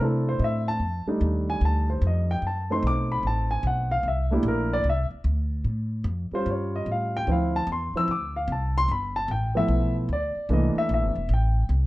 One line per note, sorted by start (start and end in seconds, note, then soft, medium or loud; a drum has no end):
0.00 0.39 C3 medium
0.00 0.77 A3 soft
0.00 0.77 C4 soft
0.00 0.78 D4 soft
0.00 0.78 E4 medium
0.04 0.28 A4 medium
0.29 0.41 C5 medium
0.39 0.79 A2 medium
0.39 0.43 D#5 soft
0.44 0.69 E5 medium
0.68 1.05 A5 medium
0.80 1.05 F2 medium
1.07 2.39 G3 medium
1.07 2.39 A3 soft
1.07 2.39 D4 soft
1.07 2.39 D#4 medium
1.07 muted upright bass stroke soft
1.21 1.60 D#2 medium
1.50 1.62 G#5 medium
1.61 2.01 D2 medium
1.65 1.90 A5 medium
1.90 2.03 C5 medium
2.02 2.41 F2 medium
2.07 2.31 D#5 medium
2.31 2.43 G5 medium
2.42 2.82 F#2 medium
2.47 2.71 A5 medium
2.70 4.01 A3 medium
2.70 4.01 C4 soft
2.70 4.01 D#4 medium
2.70 2.84 C6 medium
2.83 3.22 B1 medium
2.87 3.11 D6 medium
3.12 3.24 B5 medium
3.23 3.62 A1 medium
3.27 3.51 A5 medium
3.51 3.64 G#5 medium
3.63 4.03 B1 medium
3.67 3.91 F#5 medium
3.91 4.04 F5 medium
4.03 4.42 C2 medium
4.08 4.32 E5 medium
4.31 4.82 A3 medium
4.31 4.83 A#3 soft
4.31 4.83 D4 soft
4.31 4.83 E4 medium
4.31 4.45 G4 medium
4.43 4.83 A#1 loud
4.48 4.72 A#4 medium
4.73 4.86 D5 medium
4.84 5.09 C2 medium
4.89 5.04 E5 medium
5.11 muted upright bass stroke soft
5.24 5.64 D2 medium
5.64 6.04 A2 medium
6.04 6.30 F2 medium
6.32 7.23 G3 soft
6.32 7.23 C#4 soft
6.32 7.24 F4 medium
6.32 6.47 C5 medium
6.32 muted upright bass stroke soft
6.46 6.85 G2 medium
6.50 6.74 C#5 medium
6.76 6.88 D#5 medium
6.86 7.25 A2 medium
6.92 7.15 F5 medium
7.17 7.28 G5 loud
7.27 7.66 D2 medium
7.27 7.58 F3 soft
7.27 7.58 C4 soft
7.27 7.59 E4 soft
7.32 7.55 F5 medium
7.56 7.68 A5 medium
7.67 7.92 E2 medium
7.72 7.96 C6 medium
7.94 8.07 F3 soft
7.94 8.07 C4 soft
7.94 8.08 E4 soft
7.94 8.09 E6 loud
7.94 muted upright bass stroke soft
8.08 8.47 D2 medium
8.08 8.35 D6 medium
8.36 8.49 F5 medium
8.48 8.87 C2 medium
8.52 8.76 A5 medium
8.78 8.89 C6 loud
8.88 9.27 G1 medium
8.88 9.16 B5 medium
9.16 9.29 A5 medium
9.28 9.68 A1 medium
9.28 9.56 G5 medium
9.55 10.06 F3 soft
9.55 10.07 A3 soft
9.55 10.07 B3 soft
9.55 10.07 E4 medium
9.55 9.94 E5 medium
9.68 10.08 B1 medium
10.09 10.34 D2 medium
10.13 10.49 D5 medium
10.35 muted upright bass stroke soft
10.49 10.74 C2 medium
10.49 11.13 E3 medium
10.49 11.14 A3 soft
10.49 11.14 A#3 soft
10.49 11.14 D4 medium
10.53 10.77 D#5 medium
10.75 10.91 E5 medium
10.75 muted upright bass stroke soft
10.89 11.03 A#1 medium
10.94 11.30 E5 medium
11.03 11.15 G1 medium
11.16 11.28 E1 medium
11.29 11.68 A1 medium
11.34 11.70 G5 medium
11.69 11.87 C2 medium